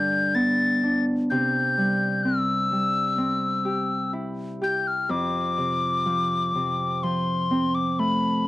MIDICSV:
0, 0, Header, 1, 3, 480
1, 0, Start_track
1, 0, Tempo, 946372
1, 663, Time_signature, 4, 2, 24, 8
1, 2094, Tempo, 964630
1, 4258, End_track
2, 0, Start_track
2, 0, Title_t, "Tin whistle"
2, 0, Program_c, 0, 75
2, 0, Note_on_c, 0, 91, 76
2, 176, Note_on_c, 0, 93, 81
2, 184, Note_off_c, 0, 91, 0
2, 533, Note_off_c, 0, 93, 0
2, 660, Note_on_c, 0, 91, 78
2, 1133, Note_on_c, 0, 88, 74
2, 1141, Note_off_c, 0, 91, 0
2, 2090, Note_off_c, 0, 88, 0
2, 2346, Note_on_c, 0, 91, 77
2, 2464, Note_on_c, 0, 89, 82
2, 2472, Note_off_c, 0, 91, 0
2, 2580, Note_on_c, 0, 86, 93
2, 2587, Note_off_c, 0, 89, 0
2, 3539, Note_on_c, 0, 84, 78
2, 3546, Note_off_c, 0, 86, 0
2, 3895, Note_on_c, 0, 86, 74
2, 3902, Note_off_c, 0, 84, 0
2, 4017, Note_on_c, 0, 83, 79
2, 4025, Note_off_c, 0, 86, 0
2, 4248, Note_off_c, 0, 83, 0
2, 4258, End_track
3, 0, Start_track
3, 0, Title_t, "Harp"
3, 0, Program_c, 1, 46
3, 0, Note_on_c, 1, 43, 49
3, 0, Note_on_c, 1, 50, 39
3, 0, Note_on_c, 1, 55, 40
3, 0, Note_on_c, 1, 62, 44
3, 177, Note_on_c, 1, 59, 45
3, 421, Note_off_c, 1, 62, 0
3, 423, Note_on_c, 1, 62, 38
3, 655, Note_off_c, 1, 43, 0
3, 665, Note_on_c, 1, 48, 53
3, 689, Note_off_c, 1, 50, 0
3, 689, Note_off_c, 1, 55, 0
3, 695, Note_off_c, 1, 59, 0
3, 900, Note_on_c, 1, 55, 37
3, 1140, Note_on_c, 1, 60, 42
3, 1373, Note_off_c, 1, 55, 0
3, 1379, Note_on_c, 1, 55, 39
3, 1611, Note_off_c, 1, 60, 0
3, 1613, Note_on_c, 1, 60, 46
3, 1842, Note_off_c, 1, 62, 0
3, 1851, Note_on_c, 1, 67, 48
3, 2095, Note_on_c, 1, 64, 48
3, 2334, Note_off_c, 1, 67, 0
3, 2336, Note_on_c, 1, 67, 50
3, 2573, Note_on_c, 1, 41, 57
3, 2596, Note_off_c, 1, 48, 0
3, 2596, Note_off_c, 1, 55, 0
3, 2603, Note_off_c, 1, 64, 0
3, 2814, Note_on_c, 1, 48, 39
3, 3054, Note_on_c, 1, 53, 45
3, 3115, Note_off_c, 1, 60, 0
3, 3293, Note_off_c, 1, 48, 0
3, 3299, Note_on_c, 1, 48, 41
3, 3315, Note_off_c, 1, 53, 0
3, 3507, Note_off_c, 1, 67, 0
3, 3540, Note_on_c, 1, 53, 49
3, 3776, Note_on_c, 1, 60, 51
3, 4015, Note_on_c, 1, 57, 47
3, 4254, Note_off_c, 1, 60, 0
3, 4258, Note_off_c, 1, 41, 0
3, 4258, Note_off_c, 1, 48, 0
3, 4258, Note_off_c, 1, 53, 0
3, 4258, Note_off_c, 1, 57, 0
3, 4258, End_track
0, 0, End_of_file